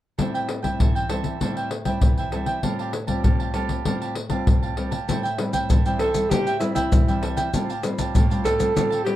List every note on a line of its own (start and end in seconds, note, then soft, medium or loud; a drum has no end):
0.18 0.77 A2 medium
0.18 0.59 G3 soft
0.18 0.60 C4 soft
0.18 0.60 E4 soft
0.18 0.32 A4 soft
0.18 0.33 C5 soft
0.18 0.33 E5 soft
0.18 0.33 G5 soft
0.18 pandeiro medium
0.18 surdo soft
0.34 0.47 C5 soft
0.34 0.48 E5 soft
0.34 0.48 G5 soft
0.34 pandeiro soft
0.49 pandeiro medium
0.63 1.05 G3 soft
0.63 1.05 C4 medium
0.63 1.05 E4 medium
0.63 0.79 C5 soft
0.63 0.78 E5 medium
0.63 0.78 G5 medium
0.63 pandeiro soft
0.63 surdo soft
0.79 1.38 E3 medium
0.79 0.94 A4 soft
0.79 0.94 C5 soft
0.79 0.95 E5 soft
0.79 0.94 G5 soft
0.79 pandeiro medium
0.79 surdo medium
0.95 1.09 C5 soft
0.95 1.09 E5 medium
0.95 1.09 G5 medium
0.95 pandeiro soft
1.09 1.36 G3 soft
1.09 1.36 C4 soft
1.09 1.36 E4 medium
1.09 1.39 A4 medium
1.09 1.40 C5 medium
1.09 1.40 E5 medium
1.09 1.40 G5 medium
1.09 pandeiro medium
1.24 pandeiro soft
1.24 surdo soft
1.40 1.99 A2 medium
1.40 1.70 G3 soft
1.40 1.70 C4 soft
1.40 1.70 E4 medium
1.40 1.55 A4 soft
1.40 1.56 C5 soft
1.40 1.56 E5 soft
1.40 1.55 G5 soft
1.40 pandeiro medium
1.40 surdo medium
1.57 1.70 C5 soft
1.57 1.71 E5 medium
1.57 1.71 G5 medium
1.57 pandeiro soft
1.71 muted cavaquinho stroke soft
1.71 pandeiro medium
1.85 2.27 G3 medium
1.85 2.27 C4 soft
1.85 2.27 E4 medium
1.85 2.17 C5 soft
1.85 2.16 E5 medium
1.85 2.15 G5 medium
1.85 pandeiro soft
1.85 surdo soft
2.01 2.61 E3 medium
2.01 pandeiro medium
2.01 surdo medium
2.18 2.32 C5 soft
2.18 2.32 E5 medium
2.18 2.32 G5 medium
2.18 pandeiro soft
2.18 surdo soft
2.32 2.59 G3 soft
2.32 2.59 C4 soft
2.32 2.59 E4 medium
2.32 2.47 A4 soft
2.32 2.47 C5 soft
2.32 2.46 E5 soft
2.32 2.45 G5 soft
2.32 pandeiro medium
2.46 2.62 C5 soft
2.46 2.62 E5 medium
2.46 2.61 G5 medium
2.46 pandeiro soft
2.63 3.21 A2 medium
2.63 2.92 G3 soft
2.63 2.92 C4 soft
2.63 2.92 F4 medium
2.63 2.78 G4 soft
2.63 2.77 A4 soft
2.63 2.78 F5 soft
2.63 2.78 A5 soft
2.63 pandeiro medium
2.63 surdo soft
2.79 2.93 G4 medium
2.79 2.93 F5 medium
2.79 2.93 A5 medium
2.79 pandeiro soft
2.93 muted cavaquinho stroke soft
2.93 pandeiro medium
3.07 3.50 G3 medium
3.07 3.50 C4 medium
3.07 3.50 F4 medium
3.07 3.23 G4 soft
3.07 3.23 F5 soft
3.07 3.23 A5 medium
3.07 pandeiro soft
3.07 surdo soft
3.23 3.83 A2 medium
3.23 3.39 G4 soft
3.23 3.38 A4 soft
3.23 3.39 F5 soft
3.23 3.38 A5 soft
3.23 pandeiro medium
3.23 surdo medium
3.40 3.53 G4 soft
3.40 3.54 F5 soft
3.40 3.54 A5 medium
3.40 pandeiro soft
3.54 3.81 G3 soft
3.54 3.81 C4 soft
3.54 3.81 F4 medium
3.54 3.84 G4 medium
3.54 3.84 A4 medium
3.54 3.85 F5 medium
3.54 3.85 A5 medium
3.54 pandeiro medium
3.69 pandeiro soft
3.69 surdo soft
3.85 4.44 A2 medium
3.85 4.15 G3 soft
3.85 4.15 C4 soft
3.85 4.15 F4 medium
3.85 4.00 G4 soft
3.85 4.00 A4 soft
3.85 4.01 F5 soft
3.85 4.00 A5 soft
3.85 pandeiro medium
3.85 surdo soft
4.01 4.15 G4 soft
4.01 4.15 F5 soft
4.01 4.15 A5 medium
4.01 pandeiro soft
4.15 muted cavaquinho stroke soft
4.15 pandeiro medium
4.30 4.72 G3 medium
4.30 4.73 C4 medium
4.30 4.73 F4 medium
4.30 4.61 G4 medium
4.30 4.61 F5 medium
4.30 4.60 A5 medium
4.30 pandeiro medium
4.30 surdo soft
4.47 5.05 A2 medium
4.47 pandeiro medium
4.47 surdo medium
4.62 4.76 G4 soft
4.62 4.77 F5 medium
4.62 4.77 A5 medium
4.62 pandeiro soft
4.62 surdo soft
4.76 4.95 G3 soft
4.76 4.96 C4 soft
4.76 4.96 F4 soft
4.76 4.92 G4 soft
4.76 4.91 A4 soft
4.76 4.91 F5 soft
4.76 4.90 A5 soft
4.76 pandeiro medium
4.91 5.07 G4 soft
4.91 5.07 F5 medium
4.91 5.06 A5 medium
4.91 pandeiro soft
5.08 5.67 A2 medium
5.08 5.26 G3 medium
5.08 5.27 C4 soft
5.08 5.27 E4 medium
5.08 5.22 A4 soft
5.08 5.23 C5 soft
5.08 5.23 E5 soft
5.08 5.22 G5 soft
5.08 pandeiro medium
5.08 maracas medium
5.08 surdo medium
5.23 5.38 C5 medium
5.23 5.38 E5 medium
5.23 5.38 G5 medium
5.23 pandeiro soft
5.23 maracas soft
5.38 5.80 G3 medium
5.38 5.80 C4 medium
5.38 5.80 E4 medium
5.38 muted cavaquinho stroke soft
5.38 pandeiro medium
5.53 5.69 C5 soft
5.53 5.69 E5 medium
5.53 5.68 G5 medium
5.53 pandeiro medium
5.53 maracas medium
5.53 surdo soft
5.70 6.28 E3 medium
5.70 5.84 A4 soft
5.70 5.84 C5 soft
5.70 5.85 E5 soft
5.70 5.85 G5 medium
5.70 pandeiro medium
5.70 maracas medium
5.70 surdo medium
5.85 6.11 G3 medium
5.85 6.11 C4 medium
5.85 6.11 E4 medium
5.85 6.00 C5 medium
5.85 6.00 E5 medium
5.85 6.00 G5 medium
5.85 pandeiro soft
5.85 maracas soft
5.99 6.31 A4 medium
5.99 6.30 A4 medium
5.99 6.30 C5 medium
5.99 6.30 E5 medium
5.99 6.31 G5 medium
5.99 pandeiro medium
6.14 6.25 G3 medium
6.14 6.26 C4 medium
6.14 6.26 E4 medium
6.14 pandeiro medium
6.14 maracas medium
6.14 surdo soft
6.30 6.89 A2 medium
6.30 6.49 G3 soft
6.30 6.49 C4 medium
6.30 6.49 E4 medium
6.30 6.59 G4 medium
6.30 6.45 A4 soft
6.30 6.46 C5 soft
6.30 6.46 E5 soft
6.30 6.46 G5 medium
6.30 pandeiro medium
6.30 maracas medium
6.30 surdo medium
6.47 6.60 C5 soft
6.47 6.61 E5 medium
6.47 6.61 G5 medium
6.47 pandeiro soft
6.47 maracas soft
6.59 7.02 G3 medium
6.59 7.02 C4 medium
6.59 6.74 E4 medium
6.59 7.03 E4 medium
6.59 pandeiro medium
6.59 maracas medium
6.75 7.18 E4 medium
6.75 7.07 C5 medium
6.75 7.06 E5 medium
6.75 7.05 G5 medium
6.75 pandeiro medium
6.75 maracas medium
6.75 surdo soft
6.92 7.50 E3 medium
6.92 pandeiro medium
6.92 maracas medium
6.92 surdo loud
7.07 7.49 G3 medium
7.07 7.49 C4 medium
7.07 7.49 E4 medium
7.07 7.21 C5 medium
7.07 7.22 E5 medium
7.07 7.22 G5 medium
7.07 pandeiro soft
7.07 maracas soft
7.07 surdo soft
7.22 7.36 A4 soft
7.22 7.37 C5 soft
7.22 7.37 E5 medium
7.22 7.35 G5 soft
7.22 pandeiro medium
7.37 7.53 C5 medium
7.37 7.52 E5 medium
7.37 7.52 G5 medium
7.37 pandeiro medium
7.37 maracas medium
7.53 8.12 A2 medium
7.53 7.71 G3 soft
7.53 7.72 C4 soft
7.53 7.72 F4 medium
7.53 7.68 G4 soft
7.53 7.68 A4 soft
7.53 7.69 F5 soft
7.53 7.68 A5 soft
7.53 pandeiro medium
7.53 maracas medium
7.53 surdo medium
7.69 7.83 G4 soft
7.69 7.83 F5 medium
7.69 7.83 A5 medium
7.69 pandeiro soft
7.69 maracas soft
7.83 8.25 G3 medium
7.83 8.25 C4 medium
7.83 8.25 F4 medium
7.83 muted cavaquinho stroke soft
7.83 pandeiro medium
7.83 maracas medium
7.99 8.14 G4 soft
7.99 8.14 F5 medium
7.99 8.13 A5 medium
7.99 pandeiro medium
7.99 maracas medium
7.99 surdo soft
8.15 8.73 A2 medium
8.15 8.29 G4 medium
8.15 8.29 A4 soft
8.15 8.30 F5 soft
8.15 8.29 A5 soft
8.15 pandeiro medium
8.15 maracas medium
8.15 surdo medium
8.30 8.56 G3 medium
8.30 8.56 C4 medium
8.30 8.56 F4 medium
8.30 8.43 G4 soft
8.30 8.44 F5 medium
8.30 8.44 A5 medium
8.30 pandeiro soft
8.30 maracas soft
8.44 8.74 G4 medium
8.44 8.74 A4 medium
8.44 9.02 A4 medium
8.44 8.75 F5 medium
8.44 8.75 A5 medium
8.44 pandeiro medium
8.44 maracas medium
8.44 surdo soft
8.59 8.70 G3 medium
8.59 8.70 C4 medium
8.59 8.71 F4 medium
8.59 pandeiro medium
8.59 maracas medium
8.59 surdo soft
8.75 9.16 A2 medium
8.75 9.01 G3 soft
8.75 9.02 C4 medium
8.75 9.02 F4 medium
8.75 8.90 G4 soft
8.75 8.90 A4 soft
8.75 8.91 F5 medium
8.75 8.89 A5 soft
8.75 pandeiro medium
8.75 maracas medium
8.75 surdo medium
8.90 9.04 G4 medium
8.90 9.05 F5 medium
8.90 9.04 A5 medium
8.90 pandeiro soft
8.90 maracas soft
9.04 9.16 G3 medium
9.04 9.16 C4 medium
9.04 9.16 F4 medium
9.04 9.16 G4 medium
9.04 muted cavaquinho stroke soft
9.04 pandeiro medium